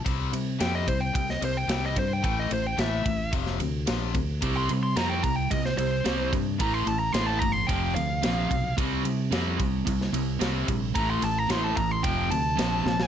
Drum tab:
RD |x-x-x-x-x-x-x-x-|x-x-x-x-x-x-x-x-|x-x-x-x-x-x-x-x-|x-x-x-x-x-x-x-x-|
SD |----o----o--o---|----o----o--o---|----o----o--o---|----o-------o---|
BD |o-----o-o-----o-|o-----o-o-----o-|o-----o-o-----o-|o-----o-o-----o-|

RD |x-x-x-x-x-x-x-x-|x-x-x-x-x-x-x---|
SD |----o----o--o---|----o-------o-oo|
BD |o-----o-o-----o-|o-----o-o-------|